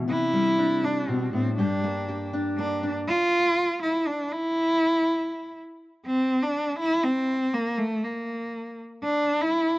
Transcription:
Already playing: steel-string acoustic guitar E4
0.08 steel-string acoustic guitar C3 D4, cello E4
0.33 steel-string acoustic guitar G3
0.59 steel-string acoustic guitar D4
0.83 steel-string acoustic guitar D4, cello D4
1.08 steel-string acoustic guitar B2, cello C4
1.33 steel-string acoustic guitar A2, cello C4
1.58 steel-string acoustic guitar G2 G4, cello D4
1.84 steel-string acoustic guitar A#3
2.09 steel-string acoustic guitar G4
2.33 steel-string acoustic guitar D4
2.57 steel-string acoustic guitar A#3, cello D4
2.83 steel-string acoustic guitar D4
3.07 cello F4
3.82 cello E4
4.07 cello D4
4.32 cello E4
6.06 cello C4
6.42 cello D4
6.79 cello E4
7.03 cello C4
7.53 cello A#3
7.78 cello A3
8.03 cello A#3
9.03 cello D4
9.41 cello E4

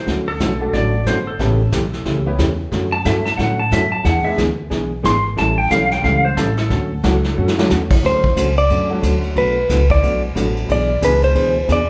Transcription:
0.06 upright bass D2, hollow-body jazz guitar D3 F#3 A3 C#4 F#4, brush sweep, kick, snare
0.28 electric slide guitar A4
0.40 upright bass B1, hollow-body jazz guitar D3 F#3 A3 C#4 F#4, kick, snare, hi-hat pedal
0.60 upright piano A3 D4 F#4 A4
0.73 upright bass A1, hollow-body jazz guitar D3 F#3 A3 C#4 F#4, electric slide guitar D5, brush sweep, kick, snare
1.06 upright bass G1, hollow-body jazz guitar D3 F#3 A3 C#4 F#4, electric slide guitar C5, kick, snare, hi-hat pedal
1.27 electric slide guitar A4
1.39 upright bass A1, hollow-body jazz guitar C#3 E3 A3 C#4 G4, upright piano B3 C#4 E4 G4 A4, brush sweep, kick, snare
1.72 upright bass B1, hollow-body jazz guitar C#3 E3 A3 C#4 G4, kick, snare, hi-hat pedal
1.93 snare
2.05 upright bass C#2, hollow-body jazz guitar C#3 E3 A3 C#4 G4, brush sweep, kick, snare
2.26 upright piano B3 C#4 E4 G4 B4
2.39 upright bass E2, hollow-body jazz guitar C#3 E3 A3 C#4 G4, kick, snare, hi-hat pedal
2.72 upright bass F#2, hollow-body jazz guitar D3 F#3 A3 C#4 F#4, brush sweep, kick, snare
2.92 electric slide guitar A5
3.05 upright bass G2, hollow-body jazz guitar D3 F#3 A3 C#4 F#4, upright piano A3 C#4 D4 F#4 A4, electric slide guitar E5, kick, snare, hi-hat pedal
3.26 electric slide guitar A5, snare
3.37 upright bass A2, hollow-body jazz guitar D3 F#3 A3 C#4 F#4, electric slide guitar F#5, brush sweep, kick, snare
3.60 electric slide guitar A5
3.71 upright bass F#2, hollow-body jazz guitar D3 F#3 A3 C#4 F#4, electric slide guitar E5, kick, snare, hi-hat pedal
3.92 electric slide guitar A5
4.04 upright bass E2, hollow-body jazz guitar E3 B3 D4 G#4, electric slide guitar F#5, brush sweep, kick, snare
4.25 upright piano G#3 B3 D4 E4 G#4, electric slide guitar E5, muted upright bass stroke
4.37 upright bass D2, hollow-body jazz guitar E3 B3 D4 G#4, kick, snare, hi-hat pedal
4.70 upright bass B1, hollow-body jazz guitar E3 B3 D4 G#4, brush sweep, kick, snare
5.03 upright bass G#1, hollow-body jazz guitar E3 B3 D4 G#4, electric slide guitar C6, kick, snare, hi-hat pedal
5.36 upright bass A1, hollow-body jazz guitar E3 G3 C#4 E4 A4, electric slide guitar A5, brush sweep, kick, snare
5.58 electric slide guitar G5
5.69 upright bass B1, hollow-body jazz guitar E3 G3 C#4 E4 A4, upright piano G3 A3 C#4 E4 G4, electric slide guitar F5, kick, snare, hi-hat pedal
5.91 electric slide guitar G5, snare
6.02 upright bass C#2, hollow-body jazz guitar E3 G3 C#4 E4 A4, electric slide guitar F5, brush sweep, kick, snare
6.25 electric slide guitar C5
6.37 upright bass A1, hollow-body jazz guitar E3 G3 C#4 E4 A4, electric slide guitar A4, kick, snare, hi-hat pedal
6.57 electric slide guitar A4, snare
6.69 upright bass D2, hollow-body jazz guitar D3 F#3 A3 C#4 F#4, brush sweep, kick, snare
7.03 upright bass C#2, hollow-body jazz guitar D3 F#3 A3 C#4 F#4, upright piano F#3 A3 C#4 D4 F#4, kick, snare, hi-hat pedal
7.24 snare
7.37 upright bass F#2, hollow-body jazz guitar D3 F#3 A3 C#4 F#4
7.48 snare
7.59 upright piano F#3 A3 C#4 D4 F#4, snare
7.69 upright bass E2, hollow-body jazz guitar D3 F#3 A3 C#4 F#4, snare, hi-hat pedal
7.90 kick, crash
8.02 upright bass D2, hollow-body jazz guitar D3 F#3 A3 C#4 F#4, electric slide guitar C5, kick, snare
8.24 kick
8.36 upright bass C#2, hollow-body jazz guitar D3 F#3 A3 C#4 F#4, kick, hi-hat pedal, ride
8.57 electric slide guitar D5, ride
8.70 upright bass F#2, hollow-body jazz guitar D3 F#3 A3 C#4 F#4, kick, ride
8.90 upright piano F#3 A3 C#4 D4 F#4
9.02 upright bass D2, hollow-body jazz guitar D3 F#3 A3 C#4 F#4, kick, hi-hat pedal, ride
9.23 ride
9.35 upright bass B1, hollow-body jazz guitar B2 F#3 A3 D4 F#4, electric slide guitar B4, kick, ride
9.69 upright bass C#2, hollow-body jazz guitar B2 F#3 A3 D4 F#4, kick, snare, hi-hat pedal, ride
9.90 electric slide guitar D5, kick, ride
10.02 upright bass B1, hollow-body jazz guitar B2 F#3 A3 D4 F#4, kick, ride
10.35 upright bass A1, hollow-body jazz guitar B2 F#3 A3 D4 F#4, upright piano F#3 A3 B3 D4 F#4, kick, hi-hat pedal, ride
10.57 ride
10.68 upright bass B1, hollow-body jazz guitar B2 E3 B3 D4 G#4, electric slide guitar D5, kick, ride
11.01 upright bass C#2, hollow-body jazz guitar B2 E3 B3 D4 G#4, upright piano B2 G#3 D4 E4 G#4, electric slide guitar B4, kick, hi-hat pedal, ride
11.23 electric slide guitar C5, ride
11.34 upright bass D2, hollow-body jazz guitar B2 E3 B3 D4 G#4, kick, ride
11.68 upright bass E2, hollow-body jazz guitar B2 E3 B3 D4 G#4, kick, hi-hat pedal, ride
11.72 electric slide guitar D5

